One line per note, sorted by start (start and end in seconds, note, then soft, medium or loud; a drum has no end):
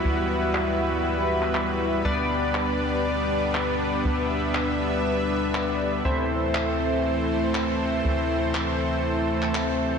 0.00 2.02 G3 medium
0.00 6.01 G3 medium
0.00 2.01 B3 medium
0.00 2.01 E4 medium
0.00 2.02 E4 medium
0.00 2.01 F#4 medium
0.00 2.02 F#4 medium
0.00 2.02 B4 medium
0.00 6.01 B4 medium
0.00 2.02 E5 medium
0.05 2.02 D2 medium
0.55 clap loud
1.42 clap soft
1.55 clap loud
2.05 4.02 D2 medium
2.05 6.02 G3 medium
2.05 6.02 B3 medium
2.05 6.01 B3 medium
2.05 6.02 D4 medium
2.05 6.01 D4 medium
2.05 6.02 B4 medium
2.05 4.03 D5 medium
2.05 6.02 D5 medium
2.55 clap loud
3.55 clap loud
4.05 6.02 D2 medium
4.05 6.03 E5 medium
4.55 clap loud
5.55 clap loud
6.05 8.02 D2 medium
6.05 9.98 E3 medium
6.05 9.98 A3 medium
6.05 9.98 C4 medium
6.05 9.98 E4 medium
6.05 9.98 A4 medium
6.05 9.98 C5 medium
6.05 9.98 E5 medium
6.55 clap loud
7.55 clap loud
8.05 9.98 D2 medium
8.55 clap loud
9.42 clap soft
9.55 clap loud